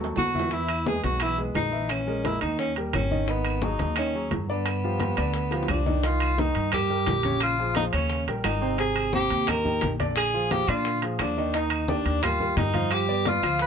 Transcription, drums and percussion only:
0.01 high conga, high timbale
0.16 high bongo, low bongo, high conga, low timbale, claves
0.34 high bongo, high conga
0.39 low timbale
0.51 high bongo, high conga
0.69 high bongo, high conga, high timbale, claves
0.86 high bongo, high conga, low timbale
1.03 high bongo, high conga, high timbale
1.20 high bongo, high conga, high timbale, claves
1.39 high conga
1.55 high bongo, low bongo, high conga, high timbale, low timbale
1.72 high bongo
1.89 high bongo, high conga, high timbale, claves
2.06 high bongo, high conga
2.24 high bongo, high conga, high timbale, low timbale
2.41 high conga, high timbale, claves
2.59 high bongo, high conga
2.76 high conga, high timbale
2.93 high bongo, low bongo, high conga, high timbale, low timbale, claves
3.11 high bongo, high conga
3.28 high bongo, high conga
3.45 high bongo, high conga, high timbale, claves
3.62 high bongo, high conga, low timbale
3.79 high bongo, high conga, high timbale
3.96 high bongo, high conga, high timbale, claves
4.13 high conga
4.31 high bongo, low bongo, high conga, high timbale, low timbale
4.49 high bongo
4.65 high bongo, high conga, high timbale, claves
4.83 high bongo, high conga
5.00 high bongo, high conga, high timbale, low timbale
5.17 high bongo, high conga, high timbale, claves
5.34 high bongo, high conga
5.51 high bongo, high conga, high timbale
5.63 low bongo
5.68 high conga, high timbale, low timbale, claves
5.86 low bongo, high conga
6.03 high bongo, high conga, high timbale
6.20 high conga, high timbale, claves
6.38 high bongo, high conga
6.55 high conga, high timbale
6.72 high bongo, high conga, low conga, high timbale, claves
6.90 high conga
7.06 high bongo, low bongo, high conga, high timbale, low timbale
7.23 high conga, high timbale
7.40 high bongo, high conga, high timbale, claves
7.59 high bongo, high conga
7.75 high bongo, high conga, high timbale
7.93 high timbale, claves
8.10 high bongo, high conga
8.27 high bongo, high conga, high timbale
8.44 high bongo, low bongo, high conga, high timbale, low timbale, claves
8.61 high bongo, high conga
8.78 high bongo, high conga, high timbale
8.96 high conga, high timbale, claves
9.13 high bongo, high conga
9.30 high conga, high timbale
9.47 high bongo, high conga, low conga, high timbale, claves
9.66 high conga, low conga
9.81 high bongo, low bongo, high conga, high timbale
10.00 high conga, high timbale
10.16 high bongo, high conga, high timbale, claves
10.34 high bongo, high conga
10.51 high bongo, high conga, high timbale
10.68 high timbale, claves
10.85 high bongo, high conga
11.02 high bongo, high conga, high timbale
11.19 high bongo, low bongo, high conga, high timbale, claves
11.37 high bongo, high conga
11.54 high bongo, high conga, high timbale
11.70 high conga, high timbale, claves
11.88 high bongo, high conga
12.06 high conga, high timbale
12.23 high bongo, high conga, low conga, high timbale, claves
12.40 high conga, low conga
12.57 high bongo, low bongo, high conga, high timbale
12.74 high conga, high timbale
12.91 high bongo, high conga, high timbale, claves
13.09 high bongo, high conga
13.25 high bongo, high conga, high timbale
13.43 high timbale, claves
13.59 high bongo, high conga

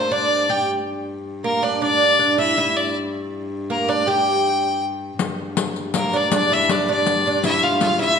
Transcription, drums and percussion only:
5.19 riq
5.57 riq
5.76 riq
5.94 riq
6.13 riq
6.32 riq
6.69 riq
6.88 riq
7.07 riq
7.26 riq
7.44 riq
7.81 riq
8.00 riq

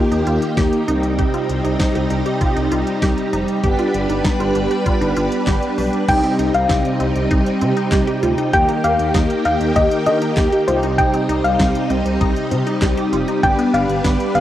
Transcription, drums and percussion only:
0.12 closed hi-hat
0.27 closed hi-hat
0.42 closed hi-hat
0.57 kick, snare, closed hi-hat
0.73 closed hi-hat
0.88 closed hi-hat
1.03 closed hi-hat
1.19 kick, closed hi-hat
1.34 closed hi-hat
1.49 closed hi-hat
1.65 closed hi-hat
1.80 kick, snare, closed hi-hat
1.95 closed hi-hat
2.10 closed hi-hat
2.26 closed hi-hat
2.41 kick, closed hi-hat
2.57 closed hi-hat
2.72 closed hi-hat
2.87 closed hi-hat
3.02 kick, snare, closed hi-hat
3.18 closed hi-hat
3.33 closed hi-hat
3.48 closed hi-hat
3.64 kick, closed hi-hat
3.79 closed hi-hat
3.94 closed hi-hat
4.10 closed hi-hat
4.25 kick, snare, closed hi-hat
4.40 closed hi-hat
4.55 closed hi-hat
4.71 closed hi-hat
4.86 kick, closed hi-hat
5.02 closed hi-hat
5.17 closed hi-hat
5.32 closed hi-hat
5.47 kick, snare, clap, closed hi-hat
5.63 closed hi-hat
5.78 open hi-hat
5.93 closed hi-hat
6.08 kick, closed hi-hat, crash
6.24 closed hi-hat
6.39 closed hi-hat
6.54 closed hi-hat
6.69 kick, snare, closed hi-hat
6.85 closed hi-hat
7.00 closed hi-hat
7.16 closed hi-hat
7.31 kick, closed hi-hat
7.46 closed hi-hat
7.61 closed hi-hat
7.77 closed hi-hat
7.92 kick, snare, clap, closed hi-hat
8.07 closed hi-hat
8.23 closed hi-hat
8.38 closed hi-hat
8.53 kick, closed hi-hat
8.69 closed hi-hat
8.84 closed hi-hat
8.99 closed hi-hat
9.14 kick, snare, closed hi-hat
9.30 closed hi-hat
9.45 closed hi-hat
9.61 closed hi-hat
9.76 kick, closed hi-hat
9.91 closed hi-hat
10.06 closed hi-hat
10.22 closed hi-hat
10.37 kick, snare, clap, closed hi-hat
10.52 closed hi-hat
10.68 closed hi-hat
10.83 closed hi-hat
10.98 kick, closed hi-hat
11.14 closed hi-hat
11.29 closed hi-hat
11.44 closed hi-hat
11.59 kick, snare, closed hi-hat
11.75 closed hi-hat
11.90 closed hi-hat
12.06 closed hi-hat
12.21 kick, closed hi-hat
12.36 closed hi-hat
12.51 closed hi-hat
12.67 closed hi-hat
12.82 kick, snare, clap, closed hi-hat
12.97 closed hi-hat
13.13 closed hi-hat
13.28 closed hi-hat
13.43 kick, closed hi-hat
13.59 closed hi-hat
13.74 closed hi-hat
13.89 closed hi-hat
14.04 kick, snare, closed hi-hat
14.20 closed hi-hat
14.35 closed hi-hat

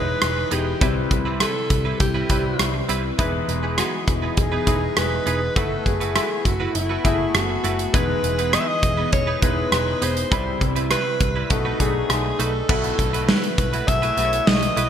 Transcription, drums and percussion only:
0.22 cross-stick, closed hi-hat
0.51 closed hi-hat
0.81 kick, closed hi-hat
1.11 kick, closed hi-hat
1.40 cross-stick, closed hi-hat
1.70 kick, closed hi-hat
2.00 kick, closed hi-hat
2.29 kick, closed hi-hat
2.59 cross-stick, closed hi-hat
2.89 closed hi-hat
3.19 kick, closed hi-hat
3.49 closed hi-hat
3.78 cross-stick, closed hi-hat
4.08 kick, closed hi-hat
4.37 kick, closed hi-hat
4.67 kick, closed hi-hat
4.97 cross-stick, closed hi-hat
5.27 closed hi-hat
5.56 kick, closed hi-hat
5.86 kick, closed hi-hat
6.01 closed hi-hat
6.16 cross-stick, closed hi-hat
6.45 kick, closed hi-hat
6.75 closed hi-hat
7.05 kick, closed hi-hat
7.35 cross-stick, closed hi-hat
7.64 closed hi-hat
7.79 closed hi-hat
7.94 kick, closed hi-hat
8.24 closed hi-hat
8.39 closed hi-hat
8.53 cross-stick, closed hi-hat
8.83 kick, closed hi-hat
9.12 kick, closed hi-hat
9.42 kick, closed hi-hat
9.72 cross-stick, closed hi-hat
10.02 closed hi-hat
10.17 closed hi-hat
10.31 kick, closed hi-hat
10.61 kick, closed hi-hat
10.76 closed hi-hat
10.91 cross-stick, closed hi-hat
11.20 kick, closed hi-hat
11.50 kick, closed hi-hat
11.80 kick, closed hi-hat
12.10 cross-stick, closed hi-hat
12.40 closed hi-hat
12.69 kick, crash
12.84 closed hi-hat
12.99 kick, closed hi-hat
13.14 closed hi-hat
13.29 snare
13.44 closed hi-hat
13.58 kick, closed hi-hat
13.73 closed hi-hat
13.88 kick, closed hi-hat
14.03 closed hi-hat
14.18 closed hi-hat
14.33 closed hi-hat
14.47 snare
14.63 closed hi-hat
14.77 closed hi-hat

